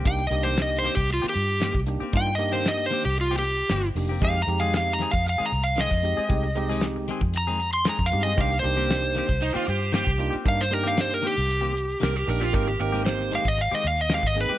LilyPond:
<<
  \new Staff \with { instrumentName = "Electric slide guitar" } { \time 4/4 \key c \minor \tempo 4 = 115 \tuplet 3/2 { g''8 ees''8 c''8 ees''8 c''8 g'8 f'8 g'4~ } g'16 r8. | \tuplet 3/2 { g''8 ees''8 c''8 ees''8 c''8 g'8 f'8 g'4~ } g'16 r8. | \tuplet 3/2 { f''8 bes''8 f''8 f''8 bes''8 f''8 f''8 bes''8 f''8 } ees''4~ | ees''4 r4 \tuplet 3/2 { bes''4 c'''8 bes''8 f''8 ees''8 } |
\tuplet 3/2 { f''8 c''4~ } c''2~ c''16 r8. | f''16 c''16 bes'16 f''16 c''16 bes'16 g'2 r8 | r4. f''16 ees''16 f''16 ees''16 f''16 ees''16 f''16 ees''16 b'8 | }
  \new Staff \with { instrumentName = "Electric slide guitar" } { \time 4/4 \key c \minor r1 | r1 | r1 | r1 |
r2 ees'16 f'16 g'8 g'8. r16 | r2. bes'16 g'16 bes'16 f'16 | bes'16 g'16 bes'8 c''8 r2 r8 | }
  \new Staff \with { instrumentName = "Tine electric piano" } { \time 4/4 \key c \minor <bes d' ees' g'>8 <bes d' ees' g'>4 r2 <bes d' ees' g'>8 | <bes d' ees' f'>8 <bes d' ees' g'>4 r2 <bes d' ees' g'>8 | <aes c' ees' g'>8 <aes c' ees' g'>4 r2 <aes c' ees' g'>8 | <aes c' ees' g'>8 <aes c' ees' g'>4 r2 <aes c' ees' g'>8 |
<bes d' ees' g'>8 <bes d' ees' g'>4 r2 <bes d' ees' f'>8 | <bes d' ees' bes'>8 <bes d' ees' g'>4 r2 <bes d' ees' g'>8 | <bes c' ees' g'>8 <bes c' ees' g'>4 r2 <bes c' ees' aes'>8 | }
  \new Staff \with { instrumentName = "Clean electric guitar" } { \time 4/4 \key c \minor r8. <ees bes c' g'>16 r8 <ees bes c' g'>16 r8 <ees bes c' g'>16 r8 <ees bes c' g'>16 r8 <bes c' g'>16 | r8. <ees bes c' g'>16 r8 <ees bes c' g'>16 r8 <ees bes c' g'>16 r8 <ees bes c' g'>16 r8 <bes c' g'>16 | <ees aes c' aes'>16 r8 <ees aes c' aes'>16 r8 <ees aes c' aes'>16 r8 <ees aes c' aes'>16 r8 <ees aes c' aes'>16 r8 <aes c' aes'>16 | r8. <ees aes c' aes'>16 r8 <ees aes c' aes'>16 r8 <ees aes c' aes'>16 r8 <ees aes c' aes'>16 r8 <aes c' aes'>16 |
<ees bes c' g'>16 r8 <ees bes c' g'>16 r8 <ees bes c' g'>16 r8 <ees bes c' g'>16 r8 <ees bes c' g'>16 r8 <bes c' g'>16 | r8. <ees bes c' g'>16 r8 <ees bes c' g'>16 r8 <ees bes c' g'>16 r8 <ees bes c' g'>16 r8 <bes c' g'>16 | <ees aes c' g'>16 r8 <ees aes c' g'>16 r8 <ees aes c' g'>16 r8 <ees aes c' g'>16 r8 <ees aes c' g'>16 r8 <aes c' g'>16 | }
  \new Staff \with { instrumentName = "Fingered electric bass" } { \clef bass \time 4/4 \key c \minor c,8 c,4~ c,16 c,8 r16 g,8. c,8 r16 | g,4.~ g,16 c,4~ c,16 g,,8 f,,8 | f,8 f,4~ f,16 f,8 r16 c,8. f,8 r16 | c,4.~ c,16 f,4. f,16 g,8 |
c,8 c,4~ c,16 c,8 r16 g,8. c,8 r16 | g,4.~ g,16 c,4~ c,16 c,8 bes,,8 | aes,,8 aes,,4~ aes,,16 aes,,8 r16 ees,8. aes,,8 r16 | }
  \new DrumStaff \with { instrumentName = "Drums" } \drummode { \time 4/4 <hh bd>16 hh16 hh16 hh16 <hh sn>8 hh16 <hh bd>16 hh16 hh16 hh16 hh16 <hh sn>16 bd16 hh16 hh16 | <hh bd>8 hh16 hh16 <hh sn>8 hho8 hh16 hh16 hh16 hh16 <hh sn>16 hh16 hho8 | <hh bd>16 hh16 hh16 hh16 <hh sn>8 <hh sn>16 <hh bd>16 hh16 hh16 hh16 hh16 <hh sn>16 <bd sn>16 hh16 hh16 | <hh bd>8 hh16 hh16 <hh sn>8 hh16 bd16 hh16 hh16 hh16 hh16 <hh sn>16 <hh bd>16 hh8 |
<hh bd>16 hh16 hh16 hh16 <hh sn>8 <hh sn>16 <hh bd>16 hh16 hh16 hh16 hh16 <hh sn>16 bd16 hh16 hh16 | <hh bd>8 hh16 hh16 <hh sn>8 hho8 hh16 hh16 hh16 hh16 <hh sn>16 hh16 hho8 | <hh bd>16 hh16 hh16 hh16 <hh sn>16 sn16 <hh sn>16 <hh bd>16 hh16 hh16 hh16 hh16 <hh sn>16 bd16 hh16 hh16 | }
>>